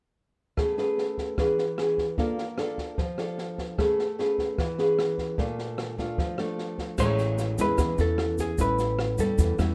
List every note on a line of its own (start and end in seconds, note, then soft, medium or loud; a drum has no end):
0.57 1.35 A3 medium
0.57 0.74 C#4 medium
0.57 0.74 G#4 soft
0.57 0.75 B4 medium
0.57 kick medium
0.57 cross-stick soft
0.57 snare soft
0.78 1.35 C#4 medium
0.78 1.35 G#4 medium
0.78 1.35 B4 medium
0.78 snare soft
0.98 snare soft
1.18 kick soft
1.18 snare soft
1.38 2.16 E3 medium
1.38 1.64 C#4 soft
1.38 1.64 G#4 soft
1.38 1.64 B4 medium
1.38 kick medium
1.38 cross-stick medium
1.38 snare soft
1.58 snare soft
1.78 2.05 C#4 medium
1.78 2.05 G#4 soft
1.78 2.05 B4 medium
1.78 cross-stick medium
1.78 snare soft
1.98 kick soft
1.98 snare soft
2.18 2.96 A#3 medium
2.18 2.44 D4 medium
2.18 2.44 F4 soft
2.18 2.44 A4 medium
2.18 kick medium
2.18 snare soft
2.38 snare soft
2.58 2.98 D4 soft
2.58 2.98 F4 soft
2.58 2.98 A4 medium
2.58 cross-stick medium
2.58 snare soft
2.78 kick soft
2.78 snare soft
2.98 3.76 F3 medium
2.98 kick soft
2.98 snare soft
3.18 3.75 D4 medium
3.18 3.75 F4 medium
3.18 3.75 A4 medium
3.18 cross-stick soft
3.18 snare soft
3.38 snare soft
3.58 kick soft
3.58 snare soft
3.78 4.56 A3 medium
3.78 4.04 C#4 soft
3.78 4.04 G#4 medium
3.78 4.04 B4 medium
3.78 kick medium
3.78 cross-stick soft
3.78 snare soft
3.99 snare soft
4.19 4.58 C#4 soft
4.19 4.58 G#4 soft
4.19 4.58 B4 medium
4.19 snare soft
4.38 kick soft
4.38 snare soft
4.58 5.37 E3 medium
4.58 kick medium
4.58 cross-stick medium
4.58 snare soft
4.78 5.35 C#4 medium
4.78 5.35 G#4 medium
4.78 5.36 B4 medium
4.78 snare soft
4.99 cross-stick medium
4.99 snare soft
5.18 kick soft
5.18 snare soft
5.38 6.16 A#2 medium
5.38 5.95 A3 medium
5.38 5.95 D4 medium
5.38 5.95 F4 medium
5.38 kick soft
5.38 snare soft
5.59 snare soft
5.78 cross-stick medium
5.78 snare soft
5.98 6.35 A3 medium
5.98 6.35 D4 medium
5.98 6.36 F4 medium
5.98 kick soft
5.98 snare soft
6.18 6.96 F3 medium
6.18 kick medium
6.18 snare soft
6.38 6.95 A3 medium
6.38 6.95 D4 medium
6.38 6.96 F4 medium
6.38 cross-stick medium
6.38 snare soft
6.58 snare soft
6.78 kick soft
6.78 snare soft
6.98 7.54 A1 medium
6.98 7.77 A2 soft
6.98 7.56 G#3 medium
6.98 7.56 C#4 soft
6.98 7.56 E4 medium
6.98 7.61 C#5 loud
6.98 kick medium
6.98 cross-stick soft
6.98 snare soft
6.98 crash medium
6.98 shaker medium
7.18 snare soft
7.18 shaker soft
7.38 snare soft
7.38 shaker soft
7.58 7.77 E2 medium
7.58 7.95 G#3 medium
7.58 7.95 C#4 medium
7.58 7.96 E4 medium
7.58 8.01 B4 medium
7.58 kick soft
7.58 snare soft
7.58 shaker medium
7.78 7.97 E2 medium
7.78 8.56 E3 soft
7.78 kick medium
7.78 cross-stick medium
7.78 snare soft
7.78 shaker medium
7.98 8.54 E2 medium
7.98 8.55 C#4 medium
7.98 8.55 E4 medium
7.98 8.40 A4 medium
7.98 snare soft
7.98 shaker soft
8.18 cross-stick medium
8.18 snare soft
8.38 8.60 G#4 medium
8.38 kick soft
8.38 snare soft
8.38 shaker medium
8.58 9.14 A1 medium
8.58 9.37 A2 medium
8.58 9.15 G3 medium
8.58 9.16 C#4 soft
8.58 9.16 E4 medium
8.58 9.22 B4 medium
8.58 kick medium
8.58 snare soft
8.58 shaker medium
8.79 snare soft
8.79 shaker soft
8.99 cross-stick medium
8.99 snare soft
9.18 9.37 E2 medium
9.18 9.55 G3 medium
9.18 9.55 C#4 medium
9.18 9.56 E4 medium
9.18 9.57 A4 medium
9.18 kick soft
9.18 snare soft
9.18 shaker medium
9.38 9.57 E2 medium
9.38 9.75 E3 medium
9.38 kick medium
9.38 snare soft
9.38 shaker medium
9.58 9.75 E2 medium
9.58 9.75 G3 medium
9.58 9.75 C#4 medium
9.58 9.75 E4 medium
9.58 cross-stick medium
9.58 snare soft
9.58 shaker soft